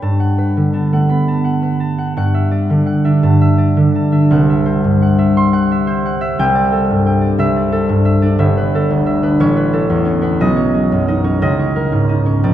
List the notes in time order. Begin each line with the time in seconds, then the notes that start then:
Already playing: B4 G5 B5
0.02 G2 A5
0.20 F#5
0.38 B4
0.57 D3
0.73 B3 A5
0.92 A3 F#5
1.09 B3 B5
1.28 A5
1.44 F#5
1.62 B4
1.80 A5
1.98 F#5
2.17 G2 F#5
2.34 E5
2.51 D5
2.70 D3
2.86 F#5
3.05 D4 E5
3.23 G2 A5
3.41 E5
3.58 D5
3.77 D3
3.95 A5
4.12 D4 E5
4.30 C2 F#5
4.49 E5
4.66 C5
4.84 G2
5.02 F#5
5.18 E5
5.37 C6
5.53 F#5
5.71 E5
5.87 C5
6.06 F#5
6.21 E5
6.39 C2 G5
6.55 D5
6.72 A4
6.90 G2
7.06 G5
7.21 D5
7.38 C2 E5
7.56 D5
7.72 A4
7.89 G2
8.05 E5
8.22 D4 D5
8.39 G1 E5
8.57 B4
8.75 A4
8.91 D2
9.06 E5
9.23 D4 B4
9.40 A1 C#5
9.56 B4
9.73 A4
9.90 E2
10.05 C#4 C#5
10.21 B3 B4
10.41 B1 D#5
10.56 C#5
10.74 G#4
10.92 F#2
11.08 D#4 D#5
11.24 C#4 C#5
11.42 C#2 D#5
11.59 C#5
11.76 A#4
11.92 G#2
12.09 D#4 D#5
12.25 C#4 C#5
12.44 A#1 D5